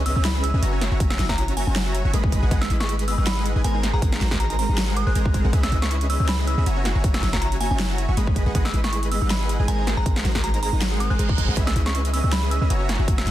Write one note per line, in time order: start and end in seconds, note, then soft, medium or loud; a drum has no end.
0.00 0.14 C#2 loud
0.00 0.14 C#4 medium
0.00 0.14 G#4 medium
0.00 0.14 B4 medium
0.00 0.14 D#5 medium
0.00 0.14 E5 medium
0.00 impact medium
0.06 0.12 B3 medium
0.06 0.12 E6 medium
0.06 open hi-hat loud
0.16 0.52 C#2 medium
0.16 0.51 C#4 medium
0.16 0.22 C#4 loud
0.16 0.51 G#4 medium
0.16 0.51 B4 medium
0.16 0.51 D#5 medium
0.16 0.51 E5 medium
0.16 0.22 E6 medium
0.25 0.31 E4 loud
0.25 0.42 B5 medium
0.25 snare loud
0.25 closed hi-hat medium
0.35 0.40 G#4 loud
0.43 0.50 E4 medium
0.43 0.61 E6 medium
0.43 closed hi-hat medium
0.54 0.61 C#2 loud
0.54 0.60 C#4 loud
0.54 0.59 C#4 medium
0.54 0.60 G#4 medium
0.54 0.60 B4 medium
0.54 0.60 D#5 medium
0.54 0.60 E5 loud
0.62 0.90 F#1 loud
0.62 0.69 B3 loud
0.62 0.89 F#4 medium
0.62 0.89 C#5 medium
0.62 0.89 E5 medium
0.62 0.89 G#5 medium
0.62 0.89 A#5 loud
0.62 closed hi-hat medium
0.73 0.76 C#4 loud
0.81 0.88 E4 medium
0.81 snare medium
0.81 closed hi-hat medium
0.91 0.98 F#1 loud
0.91 0.97 F#4 loud
0.91 0.98 F#4 medium
0.91 0.98 C#5 medium
0.91 0.98 E5 medium
0.91 0.98 G#5 medium
0.91 0.98 A#5 medium
1.00 1.17 F#1 loud
1.00 1.07 A#3 medium
1.00 1.17 F#4 medium
1.00 1.17 C#5 medium
1.00 1.17 E5 medium
1.00 1.17 G#5 medium
1.00 1.17 A#5 medium
1.00 kick loud
1.00 closed hi-hat medium
1.10 1.16 C#4 medium
1.10 1.16 E6 medium
1.10 snare medium
1.19 1.65 F#1 loud
1.19 1.26 E4 loud
1.19 1.65 F#4 medium
1.19 1.65 C#5 medium
1.19 1.65 E5 medium
1.19 1.65 G#5 medium
1.19 1.65 A#5 medium
1.19 1.26 E6 medium
1.19 snare medium
1.19 closed hi-hat medium
1.29 1.35 F#4 medium
1.29 1.35 A#5 medium
1.29 kick medium
1.29 snare medium
1.38 1.44 E4 loud
1.38 1.45 A#5 medium
1.38 closed hi-hat medium
1.48 1.54 C#4 medium
1.48 closed hi-hat medium
1.57 1.63 A#3 medium
1.57 1.63 G#5 medium
1.57 open hi-hat loud
1.67 2.03 F#1 medium
1.67 1.73 C#4 loud
1.67 2.02 F#4 medium
1.67 2.02 C#5 medium
1.67 2.02 E5 medium
1.67 1.73 G#5 medium
1.67 2.02 G#5 medium
1.67 2.02 A#5 medium
1.76 1.82 E4 loud
1.76 snare loud
1.76 closed hi-hat medium
1.86 1.91 F#4 loud
1.95 2.01 E4 medium
1.95 closed hi-hat medium
2.05 2.12 F#1 loud
2.05 2.10 C#4 medium
2.05 2.11 F#4 medium
2.05 2.11 C#5 medium
2.05 2.11 E5 medium
2.05 2.11 G#5 medium
2.05 2.11 C#6 loud
2.14 2.41 G#1 loud
2.14 2.40 G#3 loud
2.14 2.20 A#3 loud
2.14 2.40 G#4 medium
2.14 2.40 B4 medium
2.14 2.40 D#5 medium
2.14 2.40 B5 loud
2.14 closed hi-hat medium
2.24 2.27 C#4 loud
2.24 kick loud
2.32 2.39 E4 medium
2.32 kick medium
2.32 closed hi-hat medium
2.43 2.49 G#1 loud
2.43 2.49 G#3 medium
2.43 2.48 G#4 loud
2.43 2.49 G#4 medium
2.43 2.49 B4 medium
2.43 2.49 D#5 medium
2.43 2.49 F#5 medium
2.51 2.68 G#1 medium
2.51 2.68 G#3 medium
2.51 2.58 B3 medium
2.51 2.68 G#4 medium
2.51 2.68 B4 medium
2.51 2.68 D#5 medium
2.51 2.68 F#5 medium
2.51 kick loud
2.51 closed hi-hat medium
2.61 2.67 D#4 medium
2.61 2.78 E6 medium
2.61 snare medium
2.70 3.16 G#1 loud
2.70 3.16 G#3 medium
2.70 2.77 E4 loud
2.70 3.16 G#4 medium
2.70 3.16 B4 medium
2.70 3.16 D#5 medium
2.70 3.16 B5 medium
2.70 closed hi-hat medium
2.80 2.86 G#4 medium
2.80 2.86 C#6 medium
2.80 snare medium
2.89 2.95 E4 loud
2.89 2.95 C#6 medium
2.89 closed hi-hat medium
2.99 3.05 D#4 medium
2.99 closed hi-hat medium
3.08 3.14 B3 medium
3.08 3.14 E6 medium
3.08 open hi-hat medium
3.18 3.54 G#1 medium
3.18 3.53 G#3 medium
3.18 3.23 D#4 loud
3.18 3.53 G#4 medium
3.18 3.53 B4 medium
3.18 3.53 D#5 medium
3.18 3.53 F#5 medium
3.18 3.24 E6 medium
3.27 3.33 E4 loud
3.27 3.44 B5 medium
3.27 snare loud
3.27 closed hi-hat medium
3.37 3.42 G#4 loud
3.46 3.52 E4 medium
3.46 closed hi-hat medium
3.56 3.63 G#1 loud
3.56 3.62 G#3 medium
3.56 3.61 D#4 medium
3.56 3.62 G#4 medium
3.56 3.62 B4 medium
3.56 3.62 D#5 medium
3.56 3.62 G#5 loud
3.64 3.91 G#1 loud
3.64 3.91 G#3 medium
3.64 3.71 B3 loud
3.64 3.91 G#4 medium
3.64 3.91 A#4 medium
3.64 3.91 C5 medium
3.64 3.81 G#5 medium
3.64 3.91 A#5 loud
3.64 closed hi-hat medium
3.75 3.78 D#4 loud
3.83 3.90 F#4 medium
3.83 snare medium
3.83 closed hi-hat medium
3.93 4.00 G#1 loud
3.93 4.00 G#3 medium
3.93 4.00 G#4 medium
3.93 3.99 G#4 loud
3.93 4.00 A#4 medium
3.93 4.00 C5 medium
3.93 4.00 F#5 medium
3.93 4.10 A#5 medium
4.02 4.19 G#1 loud
4.02 4.19 G#3 medium
4.02 4.09 C4 medium
4.02 4.19 G#4 medium
4.02 4.19 A#4 medium
4.02 4.19 C5 medium
4.02 4.19 F#5 medium
4.02 kick loud
4.02 closed hi-hat medium
4.12 4.18 D#4 medium
4.12 snare medium
4.21 4.67 G#1 loud
4.21 4.67 G#3 medium
4.21 4.27 F#4 loud
4.21 4.67 G#4 medium
4.21 4.67 A#4 medium
4.21 4.67 C5 medium
4.21 4.67 A#5 medium
4.21 snare medium
4.21 closed hi-hat medium
4.31 4.37 G#4 medium
4.31 kick medium
4.31 snare medium
4.40 4.46 F#4 loud
4.40 4.46 A#5 medium
4.40 closed hi-hat medium
4.50 4.56 D#4 medium
4.50 4.56 A#5 medium
4.50 closed hi-hat medium
4.59 4.65 C4 medium
4.59 4.76 A#5 medium
4.59 open hi-hat medium
4.69 5.05 G#1 medium
4.69 5.04 G#3 medium
4.69 4.74 D#4 loud
4.69 5.04 G#4 medium
4.69 5.04 A#4 medium
4.69 5.04 C5 medium
4.69 5.04 F#5 medium
4.78 4.84 F#4 medium
4.78 snare loud
4.78 closed hi-hat medium
4.88 4.93 G#4 loud
4.97 5.06 C5 medium
4.97 5.05 D#6 medium
4.97 closed hi-hat medium
5.07 5.14 G#1 loud
5.07 5.13 G#3 medium
5.07 5.13 G#4 medium
5.07 5.13 A#4 medium
5.07 5.13 C5 medium
5.07 5.10 C5 medium
5.07 5.13 G#5 loud
5.07 5.34 F#6 medium
5.15 5.42 G#1 loud
5.15 5.42 G#3 medium
5.15 5.25 C4 loud
5.15 5.42 G#4 medium
5.15 5.42 A#4 medium
5.15 5.42 C5 medium
5.15 5.42 A#5 loud
5.15 closed hi-hat medium
5.26 5.31 G#4 medium
5.26 kick loud
5.34 5.38 C4 medium
5.34 kick medium
5.34 closed hi-hat medium
5.44 5.51 G#1 loud
5.44 5.51 G#3 medium
5.44 5.50 C4 loud
5.44 5.51 G#4 medium
5.44 5.51 A#4 medium
5.44 5.51 C5 medium
5.44 5.51 F#5 medium
5.53 5.70 C#2 medium
5.53 5.60 B3 medium
5.53 5.70 C#4 medium
5.53 5.70 G#4 medium
5.53 5.70 B4 medium
5.53 5.70 D#5 medium
5.53 5.70 E5 medium
5.53 kick loud
5.53 closed hi-hat medium
5.63 5.69 C#4 medium
5.63 5.80 E6 medium
5.63 snare medium
5.72 6.18 C#2 loud
5.72 6.17 C#4 medium
5.72 5.78 E4 loud
5.72 6.17 G#4 medium
5.72 6.17 B4 medium
5.72 6.17 D#5 medium
5.72 6.17 E5 medium
5.72 closed hi-hat medium
5.82 5.88 G#4 medium
5.82 5.88 C#6 medium
5.82 snare medium
5.91 5.97 E4 loud
5.91 5.97 C#6 medium
5.91 closed hi-hat medium
6.01 6.06 C#4 medium
6.01 closed hi-hat medium
6.10 6.16 B3 medium
6.10 6.16 E6 medium
6.10 open hi-hat medium
6.20 6.56 C#2 medium
6.20 6.25 C#4 loud
6.20 6.55 C#4 medium
6.20 6.55 G#4 medium
6.20 6.55 B4 medium
6.20 6.55 D#5 medium
6.20 6.55 E5 medium
6.20 6.26 E6 medium
6.29 6.35 E4 loud
6.29 6.46 B5 medium
6.29 snare loud
6.29 closed hi-hat medium
6.39 6.44 G#4 loud
6.47 6.54 E4 medium
6.47 6.64 E6 medium
6.47 closed hi-hat medium
6.58 6.65 C#2 loud
6.58 6.63 C#4 medium
6.58 6.64 C#4 medium
6.58 6.64 G#4 medium
6.58 6.64 B4 medium
6.58 6.64 D#5 medium
6.58 6.64 E5 loud
6.66 6.93 F#1 medium
6.66 6.73 B3 loud
6.66 6.93 F#4 loud
6.66 6.93 C#5 medium
6.66 6.93 E5 medium
6.66 6.93 G#5 medium
6.66 6.93 A#5 loud
6.66 closed hi-hat medium
6.76 6.80 C#4 loud
6.85 6.92 E4 medium
6.85 snare medium
6.85 closed hi-hat medium
6.95 7.02 F#1 loud
6.95 7.01 F#4 loud
6.95 7.02 F#4 medium
6.95 7.02 C#5 medium
6.95 7.02 E5 medium
6.95 7.02 G#5 medium
6.95 7.02 A#5 medium
7.04 7.21 F#1 medium
7.04 7.10 A#3 medium
7.04 7.21 F#4 medium
7.04 7.21 C#5 medium
7.04 7.21 E5 medium
7.04 7.21 G#5 medium
7.04 7.21 A#5 medium
7.04 kick loud
7.04 closed hi-hat medium
7.14 7.20 C#4 medium
7.14 7.20 E6 medium
7.14 snare medium
7.23 7.69 F#1 loud
7.23 7.29 E4 loud
7.23 7.68 F#4 medium
7.23 7.68 C#5 medium
7.23 7.68 E5 medium
7.23 7.68 G#5 medium
7.23 7.68 A#5 medium
7.23 7.29 E6 medium
7.23 snare medium
7.23 closed hi-hat medium
7.33 7.39 F#4 medium
7.33 7.39 A#5 medium
7.33 kick medium
7.33 snare medium
7.42 7.48 E4 loud
7.42 7.48 A#5 medium
7.42 closed hi-hat medium
7.52 7.57 C#4 medium
7.52 closed hi-hat medium
7.61 7.67 A#3 medium
7.61 7.67 G#5 medium
7.61 open hi-hat medium
7.71 8.07 F#1 loud
7.71 7.76 C#4 loud
7.71 8.06 F#4 medium
7.71 8.06 C#5 medium
7.71 8.06 E5 medium
7.71 7.76 G#5 medium
7.71 8.06 G#5 medium
7.71 8.06 A#5 medium
7.79 7.86 E4 loud
7.79 snare loud
7.79 closed hi-hat medium
7.90 7.95 F#4 loud
7.98 8.05 E4 medium
7.98 closed hi-hat medium
8.08 8.15 F#1 loud
8.08 8.14 C#4 medium
8.08 8.15 F#4 loud
8.08 8.15 C#5 medium
8.08 8.15 E5 medium
8.08 8.15 G#5 medium
8.08 8.15 C#6 loud
8.17 8.44 G#1 loud
8.17 8.44 G#3 loud
8.17 8.24 A#3 loud
8.17 8.44 G#4 medium
8.17 8.44 B4 medium
8.17 8.44 D#5 medium
8.17 8.44 B5 loud
8.17 closed hi-hat medium
8.27 8.31 C#4 loud
8.27 kick loud
8.36 8.42 E4 medium
8.36 kick medium
8.36 closed hi-hat medium
8.46 8.53 G#1 loud
8.46 8.53 G#3 medium
8.46 8.52 G#4 loud
8.46 8.53 G#4 medium
8.46 8.53 B4 medium
8.46 8.53 D#5 medium
8.46 8.53 F#5 medium
8.55 8.72 G#1 medium
8.55 8.72 G#3 medium
8.55 8.61 B3 medium
8.55 8.72 G#4 medium
8.55 8.72 B4 medium
8.55 8.72 D#5 medium
8.55 8.72 F#5 medium
8.55 kick loud
8.55 closed hi-hat medium
8.65 8.71 D#4 medium
8.65 8.82 E6 loud
8.65 snare medium
8.74 9.20 G#1 loud
8.74 9.19 G#3 medium
8.74 8.80 E4 loud
8.74 9.19 G#4 medium
8.74 9.19 B4 medium
8.74 9.19 D#5 medium
8.74 9.19 B5 medium
8.74 closed hi-hat medium
8.84 8.89 G#4 medium
8.84 8.90 C#6 medium
8.84 snare medium
8.93 8.99 E4 loud
8.93 8.99 C#6 medium
8.93 closed hi-hat medium
9.03 9.08 D#4 medium
9.03 closed hi-hat medium
9.12 9.18 B3 medium
9.12 9.18 E6 medium
9.12 open hi-hat loud
9.22 9.57 G#1 loud
9.22 9.57 G#3 medium
9.22 9.27 D#4 loud
9.22 9.57 G#4 medium
9.22 9.57 B4 medium
9.22 9.57 D#5 medium
9.22 9.57 F#5 medium
9.22 9.27 E6 medium
9.30 9.37 E4 loud
9.30 9.47 B5 medium
9.30 snare loud
9.30 closed hi-hat medium
9.41 9.46 G#4 loud
9.49 9.56 E4 medium
9.49 closed hi-hat medium
9.59 9.66 G#1 loud
9.59 9.66 G#3 loud
9.59 9.65 D#4 medium
9.59 9.66 G#4 medium
9.59 9.66 B4 medium
9.59 9.66 D#5 medium
9.59 9.66 G#5 loud
9.68 9.95 G#1 medium
9.68 9.95 G#3 loud
9.68 9.75 B3 loud
9.68 9.95 G#4 medium
9.68 9.95 A#4 medium
9.68 9.95 C5 medium
9.68 9.85 G#5 loud
9.68 9.95 A#5 loud
9.68 closed hi-hat medium
9.78 9.82 D#4 loud
9.87 9.94 F#4 medium
9.87 snare medium
9.87 closed hi-hat medium
9.97 10.04 G#1 loud
9.97 10.04 G#3 medium
9.97 10.03 G#4 loud
9.97 10.04 G#4 medium
9.97 10.04 A#4 medium
9.97 10.04 C5 medium
9.97 10.04 F#5 medium
9.97 10.14 A#5 medium
10.06 10.23 G#1 medium
10.06 10.23 G#3 medium
10.06 10.12 C4 medium
10.06 10.23 G#4 medium
10.06 10.23 A#4 medium
10.06 10.23 C5 medium
10.06 10.23 F#5 medium
10.06 kick loud
10.06 closed hi-hat medium
10.16 10.22 D#4 medium
10.16 snare medium
10.25 10.71 G#1 loud
10.25 10.70 G#3 medium
10.25 10.31 F#4 loud
10.25 10.70 G#4 medium
10.25 10.70 A#4 medium
10.25 10.70 C5 medium
10.25 10.70 A#5 medium
10.25 snare medium
10.25 closed hi-hat medium
10.35 10.40 G#4 medium
10.35 kick medium
10.35 snare medium
10.44 10.50 F#4 loud
10.44 10.50 A#5 medium
10.44 closed hi-hat medium
10.54 10.59 D#4 medium
10.54 10.59 A#5 medium
10.54 closed hi-hat medium
10.63 10.69 C4 medium
10.63 10.80 A#5 medium
10.63 open hi-hat loud
10.73 11.08 G#1 medium
10.73 11.08 G#3 medium
10.73 10.78 D#4 loud
10.73 11.08 G#4 medium
10.73 11.08 A#4 medium
10.73 11.08 C5 medium
10.73 11.08 F#5 medium
10.81 10.88 F#4 loud
10.81 snare loud
10.81 closed hi-hat medium
10.81 reverse cymbal medium
10.92 10.97 G#4 loud
11.00 11.07 C4 loud
11.00 11.08 D#6 medium
11.00 closed hi-hat medium
11.10 11.17 G#1 loud
11.10 11.17 G#3 loud
11.10 11.14 C4 medium
11.10 11.17 G#4 medium
11.10 11.17 A#4 medium
11.10 11.17 C5 medium
11.10 11.17 G#5 loud
11.10 11.38 F#6 medium
11.19 11.46 G#1 loud
11.19 11.46 G#3 loud
11.19 11.29 G#4 loud
11.19 11.46 G#4 medium
11.19 11.46 A#4 medium
11.19 11.46 C5 medium
11.19 11.46 A#5 loud
11.19 closed hi-hat medium
11.29 11.33 D#4 medium
11.29 kick loud
11.38 11.44 D#5 medium
11.38 kick medium
11.38 closed hi-hat medium
11.48 11.58 G#1 loud
11.48 11.55 G#3 medium
11.48 11.54 C4 medium
11.48 11.55 G#4 medium
11.48 11.55 A#4 medium
11.48 11.55 C5 medium
11.48 11.55 F#5 medium
11.57 11.74 C#2 medium
11.57 11.63 B3 medium
11.57 11.74 C#4 medium
11.57 11.74 G#4 medium
11.57 11.74 B4 medium
11.57 11.74 D#5 medium
11.57 11.74 E5 medium
11.57 kick loud
11.57 closed hi-hat medium
11.67 11.73 C#4 medium
11.67 11.84 E6 medium
11.67 snare medium
11.76 12.22 C#2 loud
11.76 12.21 C#4 medium
11.76 11.82 E4 loud
11.76 12.21 G#4 medium
11.76 12.21 B4 medium
11.76 12.21 D#5 medium
11.76 12.21 E5 medium
11.76 closed hi-hat medium
11.86 11.91 G#4 medium
11.86 11.91 C#6 medium
11.86 snare medium
11.94 12.01 E4 loud
11.94 12.01 C#6 medium
11.94 closed hi-hat medium
12.05 12.10 C#4 medium
12.05 closed hi-hat medium
12.13 12.20 B3 medium
12.13 12.20 E6 medium
12.13 open hi-hat loud
12.24 12.59 C#2 medium
12.24 12.59 C#4 medium
12.24 12.29 C#4 loud
12.24 12.59 G#4 medium
12.24 12.59 B4 medium
12.24 12.59 D#5 medium
12.24 12.59 E5 medium
12.24 12.29 E6 medium
12.32 12.39 E4 loud
12.32 12.49 B5 loud
12.32 snare loud
12.32 closed hi-hat medium
12.43 12.48 G#4 loud
12.51 12.58 E4 medium
12.51 12.68 E6 medium
12.51 closed hi-hat medium
12.61 12.68 C#2 loud
12.61 12.68 C#4 medium
12.61 12.67 C#4 medium
12.61 12.68 G#4 medium
12.61 12.68 B4 medium
12.61 12.68 D#5 medium
12.61 12.68 E5 loud
12.70 12.97 F#1 loud
12.70 12.77 B3 loud
12.70 12.97 F#4 loud
12.70 12.97 C#5 medium
12.70 12.97 E5 medium
12.70 12.97 G#5 medium
12.70 12.97 A#5 loud
12.70 closed hi-hat medium
12.80 12.84 C#4 loud
12.89 12.95 E4 medium
12.89 snare medium
12.89 closed hi-hat medium
12.99 13.06 F#1 loud
12.99 13.06 F#4 medium
12.99 13.05 F#4 loud
12.99 13.06 C#5 medium
12.99 13.06 E5 medium
12.99 13.06 G#5 medium
12.99 13.06 A#5 medium
13.08 13.25 F#1 loud
13.08 13.14 A#3 medium
13.08 13.25 F#4 medium
13.08 13.25 C#5 medium
13.08 13.25 E5 medium
13.08 13.25 G#5 medium
13.08 13.25 A#5 medium
13.08 kick loud
13.08 closed hi-hat medium
13.18 13.24 C#4 medium
13.18 13.24 E6 medium
13.18 snare medium
13.27 13.31 F#1 loud
13.27 13.31 E4 loud
13.27 13.31 F#4 medium
13.27 13.31 C#5 medium
13.27 13.31 E5 medium
13.27 13.31 G#5 medium
13.27 13.31 A#5 medium
13.27 13.31 E6 medium
13.27 snare medium
13.27 closed hi-hat medium